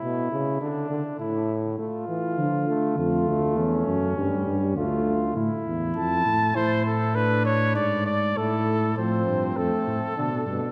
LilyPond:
<<
  \new Staff \with { instrumentName = "Trumpet" } { \time 3/4 \key d \minor \tempo 4 = 101 r2. | r2. | r2. | r4 a''4 c''8 a'8 |
b'8 cis''8 d''8 d''8 a'4 | c''4 a'2 | }
  \new Staff \with { instrumentName = "Flugelhorn" } { \time 3/4 \key d \minor e'4 d'4 e'8 r8 | f'2 f'4 | cis'2 f'4 | e'2 e'4 |
d'4. r8 e'4 | c'2 d'4 | }
  \new Staff \with { instrumentName = "Trombone" } { \clef bass \time 3/4 \key d \minor b,8 cis8 d8 d8 a,4 | a8 e8 f8 a8 a4~ | a4 g4 a4 | r2. |
r2. | f4 a4 d8 b,8 | }
  \new Staff \with { instrumentName = "Tuba" } { \clef bass \time 3/4 \key d \minor r2. | r4 d4 f,8 d,8 | e,8 fis,8 g,8 g,8 d,4 | a,8 e,8 f,8 a,8 a,4~ |
a,4 gis,4 a,4 | a,8 g,8 f,8 a,8 b,8 g,8 | }
>>